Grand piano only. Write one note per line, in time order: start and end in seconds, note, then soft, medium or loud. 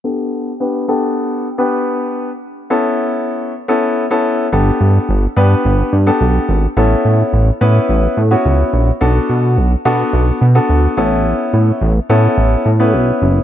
0.04 0.50 B3 medium
0.04 0.50 D4 medium
0.04 0.50 G4 medium
0.04 0.50 A4 medium
0.60 0.83 B3 medium
0.60 0.83 D4 medium
0.60 0.83 G4 medium
0.60 0.83 B4 medium
0.88 1.46 B3 medium
0.88 1.46 D4 medium
0.88 1.46 G4 medium
0.88 1.46 A4 loud
1.58 2.28 B3 medium
1.58 2.28 D4 medium
1.58 2.28 G4 medium
1.58 2.29 B4 loud
2.70 3.51 B3 medium
2.70 3.51 C#4 medium
2.70 3.51 E4 medium
2.70 3.51 A4 medium
3.68 4.03 B3 medium
3.68 4.03 C#4 medium
3.68 4.03 E4 medium
3.68 4.03 A4 medium
4.11 4.45 B3 medium
4.11 4.45 C#4 medium
4.11 4.45 E4 medium
4.11 4.45 A4 loud
4.52 5.22 B3 medium
4.52 5.22 D4 medium
4.52 5.22 G4 medium
4.52 5.22 A4 medium
5.36 5.94 B3 medium
5.36 5.94 D4 medium
5.36 5.94 G4 medium
5.36 5.94 B4 loud
6.07 6.64 B3 medium
6.07 6.64 D4 medium
6.07 6.64 G4 medium
6.07 6.65 A4 medium
6.77 7.46 B3 medium
6.77 7.46 C#4 medium
6.77 7.46 E4 medium
6.77 7.46 A4 medium
7.61 8.19 B3 medium
7.61 8.19 C#4 medium
7.61 8.19 E4 medium
7.61 8.19 B4 loud
8.31 8.89 B3 medium
8.31 8.89 C#4 medium
8.31 8.89 E4 medium
8.31 8.89 F#4 medium
9.01 9.70 B3 medium
9.01 9.70 D4 medium
9.01 9.70 F#4 medium
9.01 9.70 A4 loud
9.85 10.43 B3 medium
9.85 10.43 D4 medium
9.85 10.43 F#4 medium
9.85 10.43 A4 loud
10.55 10.96 B3 medium
10.55 10.97 D4 medium
10.55 10.97 F#4 medium
10.55 10.96 A4 medium
10.97 11.89 B3 medium
10.97 11.89 C#4 medium
10.97 11.90 E4 medium
10.97 11.90 A4 medium
12.09 12.67 B3 medium
12.09 12.67 C#4 medium
12.09 12.67 E4 medium
12.09 12.67 A4 loud
12.80 13.37 B3 medium
12.80 13.37 C#4 medium
12.80 13.37 E4 medium
12.80 13.37 B4 medium